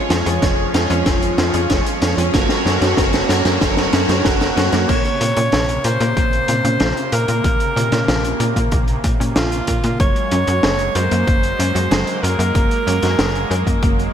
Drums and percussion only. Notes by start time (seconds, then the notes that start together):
0.10 snare, closed hi-hat
0.26 closed hi-hat
0.42 kick, snare, closed hi-hat
0.74 snare, closed hi-hat
0.90 closed hi-hat
1.06 kick, snare, closed hi-hat
1.22 closed hi-hat
1.38 snare, closed hi-hat
1.54 closed hi-hat
1.70 kick, snare, closed hi-hat
1.86 closed hi-hat
2.02 snare, closed hi-hat
2.18 closed hi-hat
2.34 kick, snare, closed hi-hat
2.49 snare, closed hi-hat
2.66 snare, closed hi-hat
2.82 snare, closed hi-hat
2.97 kick, snare, closed hi-hat
3.13 snare, closed hi-hat
3.29 snare, closed hi-hat
3.45 snare, closed hi-hat
3.61 kick, snare, closed hi-hat
3.77 snare, closed hi-hat
3.93 snare, closed hi-hat
4.09 snare, closed hi-hat
4.25 kick, snare, closed hi-hat
4.41 snare, closed hi-hat
4.57 snare, closed hi-hat
4.72 snare, closed hi-hat
4.89 kick, closed hi-hat, crash
5.05 closed hi-hat
5.21 closed hi-hat
5.36 closed hi-hat
5.52 snare, closed hi-hat
5.69 closed hi-hat
5.84 closed hi-hat
6.00 closed hi-hat
6.17 kick, closed hi-hat
6.33 closed hi-hat
6.48 closed hi-hat
6.65 closed hi-hat
6.80 snare, closed hi-hat
6.97 closed hi-hat
7.12 closed hi-hat
7.28 closed hi-hat
7.44 kick, closed hi-hat
7.60 closed hi-hat
7.77 closed hi-hat
7.92 snare, closed hi-hat
8.08 snare, closed hi-hat
8.24 closed hi-hat
8.40 closed hi-hat
8.56 kick, closed hi-hat
8.72 kick, closed hi-hat
8.88 closed hi-hat
9.04 kick, closed hi-hat
9.21 closed hi-hat
9.36 snare, closed hi-hat
9.52 closed hi-hat
9.67 kick, closed hi-hat
9.84 closed hi-hat
10.00 kick, closed hi-hat
10.16 closed hi-hat
10.31 closed hi-hat
10.47 closed hi-hat
10.63 snare, closed hi-hat
10.79 closed hi-hat
10.95 closed hi-hat
11.11 closed hi-hat
11.27 kick, closed hi-hat
11.43 closed hi-hat
11.60 closed hi-hat
11.76 closed hi-hat
11.91 snare, closed hi-hat
12.07 closed hi-hat
12.24 closed hi-hat
12.40 closed hi-hat
12.55 kick, closed hi-hat
12.71 closed hi-hat
12.87 closed hi-hat
13.02 snare, closed hi-hat
13.19 snare, closed hi-hat
13.35 closed hi-hat
13.51 closed hi-hat
13.67 kick, closed hi-hat
13.83 kick, closed hi-hat
13.99 closed hi-hat